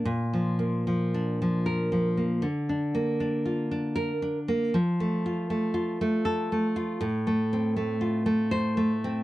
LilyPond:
\new Staff \with { instrumentName = "Nylon-string guitar" } { \time 3/4 \key bes \major \tempo 4 = 78 << { r2 bes'8 r8 | r2 bes'8 r8 | r2 a'8 r8 | r2 c''8 r8 | } \\ { \tuplet 3/2 { bes,8 f8 bes8 f8 d'8 f8~ f8 f8 bes8 } | \tuplet 3/2 { d8 d'8 bes8 d'8 f'8 d'8~ d'8 d'8 bes8 } | \tuplet 3/2 { f8 a8 f'8 a8 f'8 a8~ a8 a8 f'8 } | \tuplet 3/2 { a,8 a8 c'8 a8 f'8 a8~ a8 a8 c'8 } | } >> }